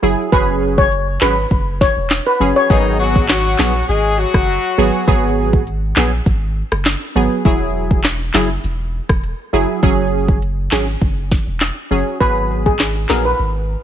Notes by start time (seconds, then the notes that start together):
0.02 F#1 F#3 E4 G#4
0.32 F#1 F#3 C#4 G#4 B4, kick, closed hi-hat
0.78 C#5, kick
0.92 closed hi-hat
1.21 G#1 F#3 C#4 G#4 B4, snare, clap
1.51 F#1, kick, closed hi-hat
1.81 C#5, kick, snare
1.97 E1
2.10 snare, clap, closed hi-hat
2.27 B4
2.40 F#1 F#3 C#4 G#4
2.56 C#5
2.70 G#1 D#3 F#3 B3 D#4 G#4, kick, closed hi-hat
3.00 F#3 F#4
3.16 kick
3.29 F#3 F#4, snare, clap, closed hi-hat
3.58 A#1 F#3 B3 G#4, snare, clap
3.89 G#1 G#3 G#4, closed hi-hat
4.19 F#3 F#4
4.34 F#1, kick, cross-stick
4.49 closed hi-hat
4.78 G#1 F#3 B3 G#4
5.07 G#1 F#3 B3 G#4, kick, closed hi-hat
5.53 kick
5.67 closed hi-hat
5.96 A#1 F#3 B3 G#4, snare, clap
6.26 G#1, kick, closed hi-hat
6.72 F#1, cross-stick
6.85 snare, clap, closed hi-hat
7.15 G#1 F#3 B3 G#4
7.45 E1 F#3 E4 G#4, kick, closed hi-hat
7.91 kick
8.04 snare, clap, closed hi-hat
8.34 F#1 F#3 E4 G#4, snare, clap
8.64 E1, closed hi-hat
9.09 E1, kick, cross-stick
9.24 closed hi-hat
9.53 F#1 F#3 E4 G#4
9.83 F#1 F#3 C#4 G#4, kick, closed hi-hat
10.28 kick
10.42 closed hi-hat
10.71 G#1 F#3 C#4 G#4, snare, clap
11.02 F#1, kick, closed hi-hat
11.31 kick, snare
11.47 E1
11.60 snare, clap, closed hi-hat
11.91 F#1 F#3 C#4 G#4
12.20 G#1 F#3 B3 G#4 B4, kick, closed hi-hat
12.66 G#4, kick
12.79 snare, clap, closed hi-hat
13.09 A#1 F#3 B3 G#4 A#4, snare, clap
13.25 B4
13.39 G#1, closed hi-hat